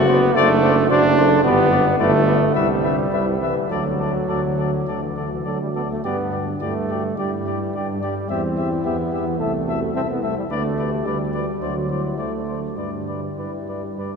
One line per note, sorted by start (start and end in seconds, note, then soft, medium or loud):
0.00 0.29 F#1 loud
0.00 0.35 F#4 loud
0.08 0.37 B3 loud
0.08 0.20 C5 medium
0.08 0.21 D5 medium
0.36 0.84 F#1 loud
0.36 0.90 A3 loud
0.36 0.92 D4 medium
0.36 0.48 C5 medium
0.36 0.48 D5 medium
0.63 0.75 C5 medium
0.63 0.76 D5 medium
0.90 1.38 F#1 loud
0.90 1.44 D4 loud
0.90 1.20 F#4 loud
0.90 1.02 C5 medium
0.90 1.03 D5 medium
1.17 1.44 A4 loud
1.17 1.30 C5 medium
1.17 1.30 D5 medium
1.45 1.93 G1 medium
1.45 1.98 B3 loud
1.45 1.72 G4 loud
1.45 1.57 B4 medium
1.45 1.57 D5 medium
1.71 1.85 D4 medium
1.71 1.85 B4 medium
1.71 1.84 D5 medium
1.99 2.49 G1 loud
1.99 2.54 A3 loud
1.99 2.27 E4 medium
1.99 2.12 B4 medium
1.99 2.12 D5 medium
2.27 2.55 D4 medium
2.27 2.40 B4 medium
2.27 2.40 D5 medium
2.55 3.06 C2 medium
2.55 3.39 G3 loud
2.55 2.69 E4 medium
2.55 2.68 B4 medium
2.55 2.68 E5 medium
2.83 2.97 D4 medium
2.83 2.97 B4 medium
2.83 2.96 E5 medium
3.12 3.56 C2 medium
3.12 3.41 E4 medium
3.12 3.25 B4 soft
3.12 3.26 E5 medium
3.41 3.72 E3 medium
3.41 3.70 G4 medium
3.41 3.54 B4 medium
3.41 3.55 E5 medium
3.70 4.22 D2 medium
3.70 5.04 F#3 medium
3.70 5.71 F#4 medium
3.70 3.83 A4 medium
3.70 3.84 D5 medium
3.99 4.12 A4 soft
3.99 4.13 D5 soft
4.28 4.80 D2 medium
4.28 4.41 A4 soft
4.28 4.42 D5 soft
4.57 4.70 A4 soft
4.57 4.71 D5 soft
4.87 5.39 D2 medium
4.87 5.00 A4 soft
4.87 5.01 D5 soft
5.03 5.16 E3 medium
5.16 5.31 D3 medium
5.16 5.30 A4 soft
5.16 5.30 D5 soft
5.32 5.45 E3 medium
5.45 5.98 D2 medium
5.45 5.60 F#3 medium
5.45 5.59 A4 soft
5.45 5.58 D5 soft
5.62 5.68 G3 medium
5.75 5.82 B3 medium
5.75 5.88 A4 soft
5.75 5.88 D5 soft
5.91 6.04 A3 medium
6.04 6.55 G2 medium
6.04 6.41 B3 medium
6.04 6.58 D4 medium
6.04 6.17 G4 medium
6.04 6.17 D5 medium
6.32 6.45 G4 soft
6.32 6.45 D5 soft
6.61 7.12 G2 medium
6.61 7.20 A3 medium
6.61 6.74 E4 medium
6.61 6.74 G4 soft
6.61 6.74 D5 soft
6.90 7.03 F#4 medium
6.90 7.03 G4 soft
6.90 7.03 D5 soft
7.18 7.68 G2 medium
7.18 8.02 G3 medium
7.18 7.74 E4 medium
7.18 7.31 G4 soft
7.18 7.31 D5 medium
7.46 7.60 G4 soft
7.46 7.59 D5 soft
7.75 8.23 G2 medium
7.75 8.02 D4 medium
7.75 7.87 G4 soft
7.75 7.87 D5 soft
8.02 8.31 G3 medium
8.02 8.15 D4 medium
8.02 8.15 G4 soft
8.02 8.14 D5 medium
8.29 8.78 E2 medium
8.29 8.86 C4 medium
8.29 9.37 E4 medium
8.29 8.42 G4 medium
8.29 8.42 E5 medium
8.57 8.70 G4 soft
8.57 8.69 E5 soft
8.85 9.33 E2 medium
8.85 9.41 B3 medium
8.85 8.97 G4 medium
8.85 8.98 E5 medium
9.13 9.25 G4 medium
9.13 9.25 E5 soft
9.39 9.88 C2 medium
9.39 9.94 A3 medium
9.39 9.67 E4 medium
9.39 9.52 A4 medium
9.39 9.52 E5 medium
9.67 9.96 F#4 medium
9.67 9.79 A4 soft
9.67 9.80 E5 medium
9.95 10.35 C2 medium
9.95 10.01 C4 medium
9.95 10.49 E4 medium
9.95 10.07 A4 soft
9.95 10.08 E5 medium
10.10 10.25 B3 medium
10.23 10.36 A3 medium
10.23 10.35 A4 soft
10.23 10.35 E5 medium
10.38 10.44 G3 medium
10.50 10.98 D2 medium
10.50 11.08 A3 medium
10.50 10.77 D4 medium
10.50 10.63 B4 medium
10.50 10.63 D5 medium
10.78 11.62 G4 medium
10.78 10.90 B4 soft
10.78 10.90 D5 medium
11.05 11.54 D2 medium
11.05 11.61 G3 medium
11.05 11.18 B4 medium
11.05 11.18 D5 medium
11.34 11.46 B4 soft
11.34 11.46 D5 soft
11.61 12.11 D2 medium
11.61 12.20 F#3 medium
11.61 11.89 F#4 medium
11.61 11.74 C5 medium
11.61 11.75 D5 soft
11.89 12.46 E4 medium
11.89 12.03 C5 soft
11.89 12.03 D5 soft
12.18 12.70 D2 soft
12.18 12.77 A3 medium
12.18 12.32 C5 soft
12.18 12.31 D5 soft
12.47 12.61 C5 soft
12.47 12.61 D5 soft
12.77 13.30 G2 soft
12.77 14.16 G3 medium
12.77 13.27 D4 soft
12.77 12.91 B4 soft
12.77 12.91 D5 soft
13.07 13.21 B4 soft
13.07 13.21 D5 soft
13.37 13.91 G2 soft
13.37 14.00 E4 medium
13.37 13.52 B4 soft
13.37 13.51 D5 soft
13.68 13.82 B4 soft
13.68 13.82 D5 soft
13.98 14.16 G2 soft
13.98 14.16 D4 soft
13.98 14.12 B4 soft
13.98 14.13 D5 soft